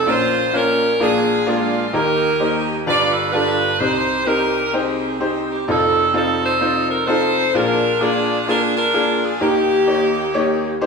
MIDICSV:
0, 0, Header, 1, 3, 480
1, 0, Start_track
1, 0, Tempo, 467654
1, 65, Time_signature, 4, 2, 24, 8
1, 11150, End_track
2, 0, Start_track
2, 0, Title_t, "Saxophone section"
2, 0, Program_c, 0, 65
2, 70, Note_on_c, 0, 65, 73
2, 88, Note_on_c, 0, 72, 113
2, 545, Note_off_c, 0, 65, 0
2, 554, Note_on_c, 0, 61, 78
2, 556, Note_off_c, 0, 72, 0
2, 557, Note_on_c, 0, 65, 70
2, 571, Note_on_c, 0, 70, 102
2, 996, Note_off_c, 0, 61, 0
2, 997, Note_off_c, 0, 65, 0
2, 1037, Note_off_c, 0, 70, 0
2, 1037, Note_on_c, 0, 62, 70
2, 1039, Note_on_c, 0, 65, 72
2, 1053, Note_on_c, 0, 68, 94
2, 1486, Note_off_c, 0, 68, 0
2, 1491, Note_off_c, 0, 62, 0
2, 1503, Note_on_c, 0, 62, 67
2, 1504, Note_on_c, 0, 56, 65
2, 1505, Note_off_c, 0, 65, 0
2, 1517, Note_on_c, 0, 65, 90
2, 1950, Note_off_c, 0, 56, 0
2, 1950, Note_off_c, 0, 62, 0
2, 1990, Note_off_c, 0, 65, 0
2, 1991, Note_on_c, 0, 63, 66
2, 1993, Note_on_c, 0, 67, 64
2, 1998, Note_on_c, 0, 70, 94
2, 2711, Note_off_c, 0, 70, 0
2, 2906, Note_off_c, 0, 63, 0
2, 2907, Note_off_c, 0, 67, 0
2, 2946, Note_on_c, 0, 71, 81
2, 2948, Note_on_c, 0, 65, 78
2, 2949, Note_on_c, 0, 74, 104
2, 3212, Note_off_c, 0, 74, 0
2, 3214, Note_on_c, 0, 69, 90
2, 3387, Note_off_c, 0, 71, 0
2, 3399, Note_on_c, 0, 71, 102
2, 3410, Note_off_c, 0, 65, 0
2, 3415, Note_off_c, 0, 69, 0
2, 3422, Note_on_c, 0, 65, 69
2, 3430, Note_on_c, 0, 62, 72
2, 3868, Note_off_c, 0, 65, 0
2, 3873, Note_off_c, 0, 62, 0
2, 3884, Note_on_c, 0, 72, 94
2, 3891, Note_off_c, 0, 71, 0
2, 3911, Note_on_c, 0, 63, 72
2, 3911, Note_on_c, 0, 67, 76
2, 4370, Note_on_c, 0, 70, 98
2, 4373, Note_off_c, 0, 72, 0
2, 4384, Note_off_c, 0, 63, 0
2, 4385, Note_off_c, 0, 67, 0
2, 4396, Note_on_c, 0, 63, 68
2, 4398, Note_on_c, 0, 67, 69
2, 4854, Note_on_c, 0, 68, 82
2, 4856, Note_off_c, 0, 70, 0
2, 4866, Note_off_c, 0, 63, 0
2, 4878, Note_on_c, 0, 63, 56
2, 4881, Note_on_c, 0, 60, 59
2, 5308, Note_off_c, 0, 67, 0
2, 5338, Note_off_c, 0, 68, 0
2, 5653, Note_on_c, 0, 67, 76
2, 5789, Note_off_c, 0, 63, 0
2, 5790, Note_off_c, 0, 60, 0
2, 5822, Note_off_c, 0, 67, 0
2, 5835, Note_on_c, 0, 63, 70
2, 5836, Note_on_c, 0, 60, 63
2, 5854, Note_on_c, 0, 69, 88
2, 6307, Note_off_c, 0, 69, 0
2, 6319, Note_on_c, 0, 69, 100
2, 6573, Note_off_c, 0, 63, 0
2, 6577, Note_off_c, 0, 69, 0
2, 6586, Note_on_c, 0, 63, 73
2, 6591, Note_on_c, 0, 69, 82
2, 6596, Note_on_c, 0, 72, 108
2, 6747, Note_off_c, 0, 60, 0
2, 7039, Note_off_c, 0, 72, 0
2, 7075, Note_on_c, 0, 70, 95
2, 7241, Note_off_c, 0, 63, 0
2, 7241, Note_off_c, 0, 69, 0
2, 7253, Note_on_c, 0, 63, 70
2, 7253, Note_on_c, 0, 69, 81
2, 7257, Note_on_c, 0, 72, 109
2, 7265, Note_off_c, 0, 70, 0
2, 7703, Note_off_c, 0, 63, 0
2, 7703, Note_off_c, 0, 69, 0
2, 7733, Note_on_c, 0, 65, 75
2, 7738, Note_on_c, 0, 62, 79
2, 7739, Note_off_c, 0, 72, 0
2, 7740, Note_on_c, 0, 70, 105
2, 8207, Note_off_c, 0, 65, 0
2, 8219, Note_on_c, 0, 74, 118
2, 8220, Note_off_c, 0, 70, 0
2, 8220, Note_on_c, 0, 65, 85
2, 8221, Note_on_c, 0, 68, 88
2, 8658, Note_off_c, 0, 62, 0
2, 8686, Note_off_c, 0, 65, 0
2, 8697, Note_on_c, 0, 70, 103
2, 8699, Note_on_c, 0, 62, 73
2, 8699, Note_on_c, 0, 65, 72
2, 8700, Note_off_c, 0, 74, 0
2, 8827, Note_off_c, 0, 70, 0
2, 8977, Note_off_c, 0, 62, 0
2, 8978, Note_off_c, 0, 65, 0
2, 8990, Note_on_c, 0, 62, 78
2, 8991, Note_on_c, 0, 65, 78
2, 8992, Note_on_c, 0, 70, 109
2, 9140, Note_off_c, 0, 68, 0
2, 9436, Note_off_c, 0, 70, 0
2, 9471, Note_on_c, 0, 68, 90
2, 9621, Note_off_c, 0, 62, 0
2, 9622, Note_off_c, 0, 65, 0
2, 9659, Note_on_c, 0, 67, 95
2, 9661, Note_on_c, 0, 58, 69
2, 9663, Note_off_c, 0, 68, 0
2, 9666, Note_on_c, 0, 63, 62
2, 11062, Note_off_c, 0, 58, 0
2, 11064, Note_off_c, 0, 63, 0
2, 11101, Note_off_c, 0, 67, 0
2, 11150, End_track
3, 0, Start_track
3, 0, Title_t, "Upright piano"
3, 0, Program_c, 1, 0
3, 65, Note_on_c, 1, 58, 67
3, 68, Note_on_c, 1, 65, 64
3, 70, Note_on_c, 1, 34, 63
3, 70, Note_on_c, 1, 61, 67
3, 71, Note_on_c, 1, 70, 73
3, 72, Note_on_c, 1, 46, 61
3, 418, Note_off_c, 1, 58, 0
3, 420, Note_off_c, 1, 65, 0
3, 421, Note_off_c, 1, 61, 0
3, 422, Note_off_c, 1, 70, 0
3, 546, Note_on_c, 1, 58, 72
3, 546, Note_on_c, 1, 61, 63
3, 547, Note_on_c, 1, 65, 71
3, 549, Note_on_c, 1, 73, 78
3, 899, Note_off_c, 1, 58, 0
3, 899, Note_off_c, 1, 61, 0
3, 899, Note_off_c, 1, 65, 0
3, 900, Note_off_c, 1, 73, 0
3, 986, Note_off_c, 1, 34, 0
3, 987, Note_off_c, 1, 46, 0
3, 1026, Note_on_c, 1, 34, 70
3, 1028, Note_on_c, 1, 46, 65
3, 1028, Note_on_c, 1, 58, 78
3, 1029, Note_on_c, 1, 65, 65
3, 1030, Note_on_c, 1, 62, 67
3, 1032, Note_on_c, 1, 68, 84
3, 1379, Note_off_c, 1, 58, 0
3, 1380, Note_off_c, 1, 65, 0
3, 1381, Note_off_c, 1, 62, 0
3, 1382, Note_off_c, 1, 68, 0
3, 1503, Note_on_c, 1, 62, 69
3, 1504, Note_on_c, 1, 65, 74
3, 1505, Note_on_c, 1, 58, 75
3, 1510, Note_on_c, 1, 68, 80
3, 1857, Note_off_c, 1, 62, 0
3, 1858, Note_off_c, 1, 58, 0
3, 1858, Note_off_c, 1, 65, 0
3, 1860, Note_off_c, 1, 68, 0
3, 1943, Note_off_c, 1, 34, 0
3, 1945, Note_off_c, 1, 46, 0
3, 1981, Note_on_c, 1, 58, 68
3, 1986, Note_on_c, 1, 51, 61
3, 1986, Note_on_c, 1, 63, 67
3, 1986, Note_on_c, 1, 67, 64
3, 1988, Note_on_c, 1, 39, 59
3, 1992, Note_on_c, 1, 70, 79
3, 2336, Note_off_c, 1, 58, 0
3, 2338, Note_off_c, 1, 63, 0
3, 2339, Note_off_c, 1, 67, 0
3, 2341, Note_off_c, 1, 70, 0
3, 2463, Note_on_c, 1, 58, 72
3, 2464, Note_on_c, 1, 63, 69
3, 2464, Note_on_c, 1, 67, 65
3, 2467, Note_on_c, 1, 72, 74
3, 2817, Note_off_c, 1, 58, 0
3, 2817, Note_off_c, 1, 63, 0
3, 2817, Note_off_c, 1, 67, 0
3, 2818, Note_off_c, 1, 72, 0
3, 2903, Note_off_c, 1, 51, 0
3, 2904, Note_off_c, 1, 39, 0
3, 2940, Note_on_c, 1, 62, 76
3, 2941, Note_on_c, 1, 31, 64
3, 2942, Note_on_c, 1, 43, 61
3, 2942, Note_on_c, 1, 67, 66
3, 2943, Note_on_c, 1, 65, 68
3, 2947, Note_on_c, 1, 71, 80
3, 3295, Note_off_c, 1, 62, 0
3, 3296, Note_off_c, 1, 67, 0
3, 3297, Note_off_c, 1, 65, 0
3, 3298, Note_off_c, 1, 71, 0
3, 3419, Note_on_c, 1, 67, 66
3, 3420, Note_on_c, 1, 62, 70
3, 3420, Note_on_c, 1, 65, 70
3, 3425, Note_on_c, 1, 69, 80
3, 3775, Note_off_c, 1, 62, 0
3, 3775, Note_off_c, 1, 65, 0
3, 3775, Note_off_c, 1, 67, 0
3, 3778, Note_off_c, 1, 69, 0
3, 3861, Note_off_c, 1, 31, 0
3, 3861, Note_off_c, 1, 43, 0
3, 3901, Note_on_c, 1, 63, 61
3, 3903, Note_on_c, 1, 36, 62
3, 3904, Note_on_c, 1, 60, 66
3, 3905, Note_on_c, 1, 72, 72
3, 3906, Note_on_c, 1, 67, 57
3, 3907, Note_on_c, 1, 48, 55
3, 4255, Note_off_c, 1, 63, 0
3, 4257, Note_off_c, 1, 60, 0
3, 4257, Note_off_c, 1, 72, 0
3, 4258, Note_off_c, 1, 67, 0
3, 4375, Note_on_c, 1, 60, 73
3, 4378, Note_on_c, 1, 63, 65
3, 4379, Note_on_c, 1, 67, 69
3, 4383, Note_on_c, 1, 70, 77
3, 4732, Note_off_c, 1, 60, 0
3, 4734, Note_off_c, 1, 63, 0
3, 4734, Note_off_c, 1, 67, 0
3, 4736, Note_off_c, 1, 70, 0
3, 4858, Note_on_c, 1, 60, 68
3, 4859, Note_on_c, 1, 63, 62
3, 4862, Note_on_c, 1, 72, 78
3, 4863, Note_on_c, 1, 79, 66
3, 5214, Note_off_c, 1, 60, 0
3, 5214, Note_off_c, 1, 63, 0
3, 5216, Note_off_c, 1, 72, 0
3, 5216, Note_off_c, 1, 79, 0
3, 5339, Note_on_c, 1, 60, 73
3, 5340, Note_on_c, 1, 63, 66
3, 5343, Note_on_c, 1, 67, 68
3, 5345, Note_on_c, 1, 72, 84
3, 5694, Note_off_c, 1, 60, 0
3, 5695, Note_off_c, 1, 63, 0
3, 5696, Note_off_c, 1, 67, 0
3, 5697, Note_off_c, 1, 72, 0
3, 5781, Note_off_c, 1, 36, 0
3, 5783, Note_off_c, 1, 48, 0
3, 5826, Note_on_c, 1, 41, 60
3, 5827, Note_on_c, 1, 60, 67
3, 5828, Note_on_c, 1, 63, 67
3, 5829, Note_on_c, 1, 29, 60
3, 5831, Note_on_c, 1, 69, 77
3, 5832, Note_on_c, 1, 65, 66
3, 6178, Note_off_c, 1, 60, 0
3, 6179, Note_off_c, 1, 63, 0
3, 6180, Note_off_c, 1, 69, 0
3, 6181, Note_off_c, 1, 65, 0
3, 6301, Note_on_c, 1, 60, 74
3, 6301, Note_on_c, 1, 63, 66
3, 6302, Note_on_c, 1, 65, 70
3, 6306, Note_on_c, 1, 69, 81
3, 6655, Note_off_c, 1, 60, 0
3, 6655, Note_off_c, 1, 63, 0
3, 6655, Note_off_c, 1, 65, 0
3, 6657, Note_off_c, 1, 69, 0
3, 6783, Note_on_c, 1, 60, 74
3, 6785, Note_on_c, 1, 63, 65
3, 6786, Note_on_c, 1, 72, 82
3, 6787, Note_on_c, 1, 65, 69
3, 7136, Note_off_c, 1, 60, 0
3, 7137, Note_off_c, 1, 63, 0
3, 7137, Note_off_c, 1, 72, 0
3, 7138, Note_off_c, 1, 65, 0
3, 7261, Note_on_c, 1, 60, 77
3, 7263, Note_on_c, 1, 63, 70
3, 7269, Note_on_c, 1, 65, 71
3, 7270, Note_on_c, 1, 69, 77
3, 7615, Note_off_c, 1, 60, 0
3, 7616, Note_off_c, 1, 63, 0
3, 7619, Note_off_c, 1, 65, 0
3, 7619, Note_off_c, 1, 69, 0
3, 7702, Note_off_c, 1, 41, 0
3, 7704, Note_off_c, 1, 29, 0
3, 7742, Note_on_c, 1, 34, 63
3, 7743, Note_on_c, 1, 62, 67
3, 7745, Note_on_c, 1, 65, 68
3, 7746, Note_on_c, 1, 58, 70
3, 7748, Note_on_c, 1, 46, 60
3, 7749, Note_on_c, 1, 68, 81
3, 8096, Note_off_c, 1, 62, 0
3, 8097, Note_off_c, 1, 58, 0
3, 8097, Note_off_c, 1, 65, 0
3, 8099, Note_off_c, 1, 68, 0
3, 8219, Note_on_c, 1, 62, 67
3, 8220, Note_on_c, 1, 58, 76
3, 8220, Note_on_c, 1, 65, 67
3, 8220, Note_on_c, 1, 68, 79
3, 8574, Note_off_c, 1, 58, 0
3, 8574, Note_off_c, 1, 62, 0
3, 8574, Note_off_c, 1, 65, 0
3, 8574, Note_off_c, 1, 68, 0
3, 8701, Note_on_c, 1, 58, 79
3, 8706, Note_on_c, 1, 62, 69
3, 8708, Note_on_c, 1, 65, 67
3, 8709, Note_on_c, 1, 68, 82
3, 9055, Note_off_c, 1, 58, 0
3, 9057, Note_off_c, 1, 62, 0
3, 9058, Note_off_c, 1, 65, 0
3, 9059, Note_off_c, 1, 68, 0
3, 9171, Note_on_c, 1, 58, 73
3, 9175, Note_on_c, 1, 62, 72
3, 9176, Note_on_c, 1, 65, 68
3, 9177, Note_on_c, 1, 68, 83
3, 9530, Note_off_c, 1, 58, 0
3, 9532, Note_off_c, 1, 62, 0
3, 9532, Note_off_c, 1, 65, 0
3, 9533, Note_off_c, 1, 68, 0
3, 9620, Note_off_c, 1, 34, 0
3, 9623, Note_off_c, 1, 46, 0
3, 9655, Note_on_c, 1, 58, 68
3, 9656, Note_on_c, 1, 39, 60
3, 9657, Note_on_c, 1, 51, 62
3, 9659, Note_on_c, 1, 63, 60
3, 9660, Note_on_c, 1, 67, 63
3, 9660, Note_on_c, 1, 70, 77
3, 10012, Note_off_c, 1, 58, 0
3, 10014, Note_off_c, 1, 63, 0
3, 10014, Note_off_c, 1, 67, 0
3, 10014, Note_off_c, 1, 70, 0
3, 10126, Note_on_c, 1, 58, 73
3, 10130, Note_on_c, 1, 63, 65
3, 10133, Note_on_c, 1, 67, 64
3, 10135, Note_on_c, 1, 73, 78
3, 10488, Note_off_c, 1, 58, 0
3, 10490, Note_off_c, 1, 63, 0
3, 10491, Note_off_c, 1, 67, 0
3, 10492, Note_off_c, 1, 73, 0
3, 10614, Note_on_c, 1, 58, 89
3, 10617, Note_on_c, 1, 63, 77
3, 10618, Note_on_c, 1, 73, 97
3, 10619, Note_on_c, 1, 67, 77
3, 10972, Note_off_c, 1, 58, 0
3, 10974, Note_off_c, 1, 63, 0
3, 10974, Note_off_c, 1, 67, 0
3, 10974, Note_off_c, 1, 73, 0
3, 11098, Note_on_c, 1, 58, 82
3, 11100, Note_on_c, 1, 67, 76
3, 11101, Note_on_c, 1, 63, 76
3, 11102, Note_on_c, 1, 72, 95
3, 11150, Note_off_c, 1, 39, 0
3, 11150, Note_off_c, 1, 51, 0
3, 11150, Note_off_c, 1, 58, 0
3, 11150, Note_off_c, 1, 63, 0
3, 11150, Note_off_c, 1, 67, 0
3, 11150, Note_off_c, 1, 72, 0
3, 11150, End_track
0, 0, End_of_file